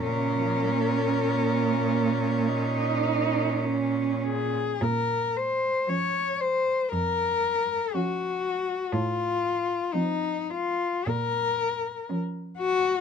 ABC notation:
X:1
M:4/4
L:1/16
Q:1/4=57
K:Bbm
V:1 name="Cello"
B12 z2 A2 | B2 c2 d2 c2 B4 G4 | F4 E2 F2 B4 z2 G2 |]
V:2 name="Cello"
D, F, B, D B,4 E4 D4 | z4 D4 z4 D4 | z4 C4 z4 D4 |]
V:3 name="Cello" clef=bass
D12- D2 z2 | z4 F,4 z4 F,4 | z4 F,4 z4 F,4 |]
V:4 name="Cello" clef=bass
B,,16 | B,,4 z4 F,,4 z4 | =A,,4 z4 B,,4 z4 |]